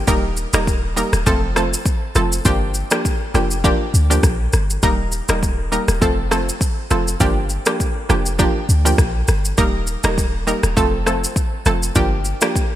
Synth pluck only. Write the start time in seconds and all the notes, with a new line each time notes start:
0.07 G3 A#3 D#4 A#4
0.53 G3 A#3 D#4 A#4
0.96 G3 A#3 D#4 A#4
1.26 F3 A3 C4 A4
1.56 F3 A3 C4 A4
2.15 F3 A3 C4 A4
2.45 F3 A#3 D4 G4
2.91 F3 A#3 D4 G4
3.34 F3 A#3 D4 G4
3.64 F3 A#3 D4 G4
4.10 F3 A#3 D4 G4
4.83 G3 A#3 D#4 A#4
5.29 G3 A#3 D#4 A#4
5.72 G3 A#3 D#4 A#4
6.01 F3 A3 C4 A4
6.31 F3 A3 C4 A4
6.91 F3 A3 C4 A4
7.20 F3 A#3 D4 G4
7.66 F3 A#3 D4 G4
8.09 F3 A#3 D4 G4
8.39 F3 A#3 D4 G4
8.85 F3 A#3 D4 G4
9.58 G3 A#3 D#4 A#4
10.04 G3 A#3 D#4 A#4
10.47 G3 A#3 D#4 A#4
10.77 F3 A3 C4 A4
11.06 F3 A3 C4 A4
11.66 F3 A3 C4 A4
11.95 F3 A#3 D4 G4
12.42 F3 A#3 D4 G4